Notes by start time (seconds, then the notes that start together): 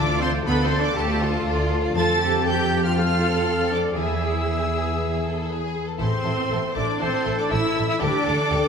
Already playing: D2 D3 A3 D4 F4 D5 D6
0.07 F4 D5
0.20 C4 D4 A4 C5 C6
0.32 F4 D5
0.44 D2 B3 D4 A4 B4 B5
0.58 F4 D5
0.63 C4 C5 C6
0.70 D4 F4 A4
0.79 D4 F4 D5 D6
0.96 D2 A3 D4 G4 A4 A5
1.10 F4 D5
1.22 D4 F4 A4
1.32 F4 D5
1.46 D2 D4 A4
1.57 F4 D5
1.70 D4 F4 A4
1.83 F4 D5
1.95 F2 F3 C4 F4 A4 A5 A6
2.20 C4 G4
2.45 G4 A4 G5 G6
2.71 C4
2.83 F4 F5 F6
2.95 A3 C4 F4 A4 F5 F6
3.21 C4 A4
3.46 A4
3.71 C4 D4 D5 D6
3.95 E2 E3 E4 G#4 E5 E6
4.22 E4
4.47 G#4 B4
4.72 G#4
4.98 B3
5.23 E4 A4
5.49 G#4 B4
5.75 G#4
5.89 A4
5.99 A1 A2 C4 E4 A4 C5 C6
6.25 A1 A3 E4 A4
6.50 A1 E4 A4
6.75 A1 D4 E4 A4 D5 D6
6.99 A1 E3 C4 E4 A4 C5 C6
7.24 A1 A3 E4 A4
7.38 D4 D5 D6
7.50 A1 E4 A4 E5 E6
7.75 A1 E4 A4
7.88 E4 E5 E6
8.00 D2 D3 D4 G4 A4 D5 D6
8.27 D2 A3 G4 A4
8.50 D2 G4 A4